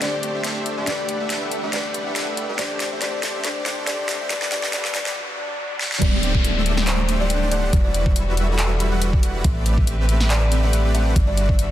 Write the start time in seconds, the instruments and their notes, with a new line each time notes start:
Already playing: 808-style bass D1, string section D3 A3 C4 G4, felt piano G4 C5, riser
0.00 felt piano D3 D4 G4 C5, supersaw synth A3 D4 G4 C5 D5, kalimba D5, snare, closed hi-hat
0.23 closed hi-hat
0.34 supersaw synth A3 D4 G4 C5 E5
0.44 snare, closed hi-hat
0.66 closed hi-hat
0.77 supersaw synth A3 D4 G4 C5 E5
0.85 808-style bass E1, felt piano D3 D4 G4 B4, string section E3 G3 D4 F#5, supersaw synth A3 D4 G4 B4 D5, kalimba D5, snare, closed hi-hat
1.09 closed hi-hat
1.20 supersaw synth A3 D4 G4 B4 E5
1.30 snare, closed hi-hat
1.52 closed hi-hat
1.63 supersaw synth A3 D4 G4 B4 E5
1.71 felt piano D3 D4 G4 B4, supersaw synth A3 D4 G4 B4 D5, kalimba D5, snare, closed hi-hat
1.94 closed hi-hat
2.06 supersaw synth A3 D4 G4 B4 E5
2.16 snare, closed hi-hat
2.37 closed hi-hat
2.49 supersaw synth A3 D4 G4 B4 E5
2.57 808-style bass A1, felt piano D3 D4 G4, string section D3 C4 G4, supersaw synth A3 D4 G4 C5 D5, kalimba D5, snare, closed hi-hat
2.61 felt piano C5
2.80 snare, closed hi-hat
2.92 supersaw synth A3 D4 G4 C5 E5
3.00 felt piano D3 D4 G4 C5, supersaw synth A3 D4 G4 C5 D5, kalimba D5, snare, closed hi-hat
3.23 snare, closed hi-hat
3.35 supersaw synth A3 D4 G4 C5 E5
3.43 felt piano D3 D4 G4, supersaw synth A3 D4 G4 C5 D5, kalimba D5, snare, closed hi-hat
3.47 felt piano C5
3.66 snare, closed hi-hat
3.78 supersaw synth A3 D4 G4 C5 E5
3.86 felt piano D3 D4 G4 C5, supersaw synth A3 D4 G4 C5 D5, kalimba D5, snare, closed hi-hat
4.09 snare, closed hi-hat
4.20 supersaw synth A3 D4 G4 C5 E5
4.28 808-style bass G1, felt piano D3 D4 G4, string section G3 F#4, supersaw synth A3 D4 G4 B4 D5, kalimba D5, snare, closed hi-hat
4.33 felt piano B4
4.42 snare
4.50 felt piano D3 D4 G4 B4, supersaw synth A3 D4 G4 B4 D5, kalimba D5, snare, closed hi-hat
4.63 snare
4.71 felt piano D3 D4 G4, supersaw synth A3 D4 G4 B4 D5, kalimba D5, snare, closed hi-hat
4.75 felt piano B4
4.85 snare
4.93 felt piano D3 D4 G4 B4, supersaw synth A3 D4 G4 B4 D5, kalimba D5, snare, closed hi-hat
5.06 snare
5.16 swell
5.80 snare
5.92 snare
6.02 808-style bass D1, string section D3 A3 C4 G4, supersaw synth A3 D4 G4 C5 D5, kalimba D5, kick, closed hi-hat, crash, downlifter
6.23 closed hi-hat
6.35 supersaw synth A3 D4 G4 C5 E5, kick
6.44 closed hi-hat
6.66 closed hi-hat
6.77 supersaw synth A3 D4 G4 C5 E5, snare
6.87 kalimba C5, clap, closed hi-hat
7.09 closed hi-hat
7.20 supersaw synth A3 D4 G4 C5 F#5, kalimba D5
7.30 closed hi-hat
7.42 supersaw synth A3 D4 G4 C5 D5
7.51 supersaw synth A3 D4 G4 C5 F#5, kalimba D5, closed hi-hat
7.73 808-style bass E1, string section E3 G3 D4 F#4, supersaw synth G3, kick, closed hi-hat
7.85 kalimba D5
7.94 closed hi-hat
8.06 supersaw synth G3 E4 F#4 B4 E5, kick
8.16 closed hi-hat
8.37 closed hi-hat
8.49 supersaw synth G3 E4 F#4 B4 E5, kalimba A4
8.59 clap, closed hi-hat
8.80 closed hi-hat
8.92 supersaw synth G3 E4 F#4 B4 F#5
9.02 closed hi-hat
9.13 supersaw synth G3 E4 F#4 B4 D5, kick
9.23 supersaw synth G3 E4 F#4 B4 F#5, closed hi-hat
9.44 808-style bass A1, string section D3 C4 G4 B4, supersaw synth A3 C4 G4 B4, kalimba E5, kick, closed hi-hat
9.66 closed hi-hat
9.78 supersaw synth A3 C4 G4 E5, kick
9.87 closed hi-hat
10.09 closed hi-hat
10.20 supersaw synth A3 C4 G4 B4 E5, snare
10.30 kalimba D5, clap, closed hi-hat
10.52 closed hi-hat
10.63 supersaw synth A3 C4 G4 B4 F#5, kalimba E5
10.73 closed hi-hat
10.85 supersaw synth A3 C4 G4 B4 D5
10.94 supersaw synth A3 C4 G4 B4 F#5, kalimba E5, closed hi-hat
11.16 808-style bass G1, string section G3 B3 F#4, kick, closed hi-hat
11.27 kalimba D5
11.37 closed hi-hat
11.49 supersaw synth G3 D4 F#4 B4 E5, kick
11.59 closed hi-hat